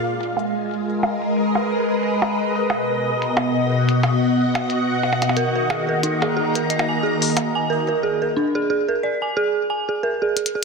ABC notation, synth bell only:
X:1
M:4/4
L:1/16
Q:"Swing 16ths" 1/4=90
K:G#dor
V:1 name="Synth bell"
z16 | z16 | A A G A D G G A d g G z2 g A A | G A =D G G A =d g G z g G A G G G |]